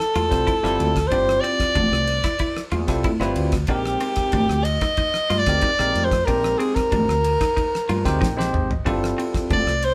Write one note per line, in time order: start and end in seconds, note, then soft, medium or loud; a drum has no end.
0.00 1.09 A4 loud
0.00 cross-stick medium
0.15 0.29 E2 medium
0.15 0.36 F4 medium
0.15 ride medium
0.15 muted conga soft
0.15 high conga medium
0.30 0.45 C2 medium
0.30 0.52 G3 medium
0.30 0.52 C4 medium
0.30 0.52 E4 medium
0.30 0.52 F4 medium
0.30 0.53 C5 medium
0.30 kick medium
0.30 cross-stick medium
0.30 ride medium
0.47 0.67 E4 medium
0.47 kick loud
0.47 ride medium
0.63 0.77 G1 medium
0.63 0.95 G3 loud
0.63 0.96 C4 medium
0.63 0.96 E4 medium
0.63 0.96 F4 medium
0.63 0.96 A4 loud
0.63 cross-stick medium
0.80 1.07 D2 medium
0.80 ride medium
0.80 high conga medium
0.96 kick medium
0.96 cross-stick medium
0.96 ride medium
1.07 1.97 G3 medium
1.07 1.42 C5 medium
1.11 1.39 G1 medium
1.11 1.98 C4 medium
1.11 1.32 D4 medium
1.11 1.98 E4 medium
1.11 1.98 F4 medium
1.11 1.98 G4 medium
1.11 kick medium
1.11 ride medium
1.11 muted conga soft
1.29 cross-stick medium
1.40 1.64 C4 medium
1.40 2.71 D5 medium
1.40 ride medium
1.60 kick medium
1.60 cross-stick medium
1.60 ride medium
1.75 1.90 F1 medium
1.75 1.96 D4 medium
1.75 kick loud
1.75 ride medium
1.75 muted conga soft
1.75 high conga loud
1.75 low conga medium
1.92 2.19 C2 medium
1.92 cross-stick medium
2.07 ride medium
2.24 2.34 E4 medium
2.24 kick medium
2.24 cross-stick medium
2.24 ride medium
2.39 2.60 E4 medium
2.39 kick medium
2.39 ride medium
2.39 muted conga soft
2.57 cross-stick medium
2.71 2.86 E2 loud
2.71 2.92 F4 medium
2.71 ride soft
2.71 muted conga soft
2.71 high conga medium
2.87 3.02 C2 medium
2.87 3.10 G3 medium
2.87 3.10 C4 medium
2.87 3.10 E4 medium
2.87 3.10 F4 medium
2.87 3.11 A4 loud
2.87 kick medium
2.87 cross-stick medium
2.87 ride medium
3.04 3.25 E4 medium
3.04 muted fretless electric bass stroke soft
3.04 kick loud
3.04 ride medium
3.04 high conga medium
3.20 3.34 G1 medium
3.20 3.53 G3 loud
3.20 3.53 C4 loud
3.20 3.53 E4 loud
3.20 3.53 F4 medium
3.20 3.54 B4 loud
3.20 cross-stick medium
3.36 3.64 D2 medium
3.36 ride medium
3.52 kick medium
3.52 cross-stick medium
3.52 ride medium
3.67 3.96 A#1 medium
3.67 4.55 G#3 medium
3.67 4.55 C4 medium
3.67 3.89 D4 medium
3.67 4.56 D#4 medium
3.67 4.66 G4 medium
3.67 4.56 G4 medium
3.67 4.56 A#4 medium
3.67 kick medium
3.67 ride medium
3.67 muted conga soft
3.86 cross-stick medium
4.00 4.21 C4 medium
4.00 ride medium
4.16 kick medium
4.16 cross-stick medium
4.16 ride medium
4.32 4.47 G#1 medium
4.32 4.54 D4 medium
4.32 kick loud
4.32 ride medium
4.32 muted conga soft
4.32 high conga loud
4.49 4.77 D2 medium
4.49 cross-stick medium
4.64 5.40 D#5 medium
4.64 ride medium
4.81 4.92 D#4 medium
4.81 kick medium
4.81 cross-stick medium
4.81 ride medium
4.97 5.18 D#4 medium
4.97 kick medium
4.97 ride medium
4.97 muted conga soft
5.14 cross-stick medium
5.30 5.44 G2 medium
5.30 5.50 F4 medium
5.30 ride medium
5.30 muted conga soft
5.30 high conga medium
5.39 6.06 D5 loud
5.46 5.60 D2 medium
5.46 5.69 G#3 medium
5.46 5.69 C4 medium
5.46 5.69 D#4 medium
5.46 5.69 G4 medium
5.46 5.69 A#4 medium
5.46 kick medium
5.46 cross-stick medium
5.46 ride medium
5.61 5.83 D#4 medium
5.61 kick loud
5.61 ride medium
5.79 5.93 A#1 medium
5.79 6.11 G#3 medium
5.79 6.12 C4 medium
5.79 6.12 D#4 medium
5.79 6.12 G4 medium
5.79 6.12 A#4 loud
5.79 cross-stick medium
5.95 6.22 F2 medium
5.95 ride medium
5.95 high conga medium
6.05 6.27 C5 medium
6.11 kick medium
6.11 cross-stick medium
6.11 ride medium
6.25 6.55 A#1 medium
6.25 7.13 G#3 medium
6.25 7.13 C4 medium
6.25 6.48 D4 medium
6.25 7.14 D#4 medium
6.25 7.14 G4 medium
6.25 6.60 A#4 medium
6.25 7.14 C5 medium
6.25 kick medium
6.25 ride medium
6.25 muted conga soft
6.44 cross-stick medium
6.58 6.80 C4 medium
6.58 6.76 G#4 medium
6.58 ride medium
6.75 8.53 A#4 medium
6.75 kick medium
6.75 cross-stick medium
6.75 ride medium
6.92 7.06 G#1 medium
6.92 7.12 D4 medium
6.92 kick medium
6.92 ride medium
6.92 muted conga soft
6.92 high conga loud
6.92 low conga medium
7.08 7.35 D2 medium
7.08 cross-stick medium
7.24 ride medium
7.41 7.51 D#4 medium
7.41 kick medium
7.41 cross-stick medium
7.41 ride medium
7.57 7.77 D#4 medium
7.57 kick medium
7.57 ride medium
7.57 muted conga soft
7.75 cross-stick medium
7.89 8.03 G2 medium
7.89 8.09 F4 medium
7.89 ride medium
7.89 muted conga soft
7.89 high conga medium
8.05 8.19 D2 medium
8.05 8.26 G#3 medium
8.05 8.26 C4 medium
8.05 8.27 D#4 medium
8.05 8.27 G4 medium
8.05 8.27 C5 loud
8.05 kick medium
8.05 cross-stick medium
8.05 ride medium
8.21 8.50 A#1 medium
8.21 8.41 D#4 medium
8.21 8.52 G5 medium
8.21 kick loud
8.21 snare medium
8.21 high conga medium
8.37 8.69 G#3 medium
8.37 8.69 C4 medium
8.37 8.69 D#4 medium
8.37 8.70 G4 medium
8.37 8.70 C5 loud
8.37 snare medium
8.53 8.82 G#1 medium
8.53 8.83 D#5 medium
8.53 mid tom medium
8.71 floor tom medium
8.85 9.13 G1 medium
8.85 9.71 G3 loud
8.85 9.71 C4 medium
8.85 9.06 D4 medium
8.85 9.72 E4 medium
8.85 9.72 F4 medium
8.85 9.72 A4 loud
8.85 kick medium
8.85 ride medium
8.85 muted conga soft
9.04 cross-stick medium
9.18 9.38 C4 medium
9.18 ride medium
9.34 kick medium
9.34 cross-stick medium
9.34 ride soft
9.50 9.64 F1 medium
9.50 9.71 D4 medium
9.50 9.86 D5 medium
9.50 kick loud
9.50 ride medium
9.50 muted conga soft
9.50 high conga loud
9.67 9.93 C2 medium
9.67 cross-stick medium
9.82 9.94 C5 medium
9.82 ride medium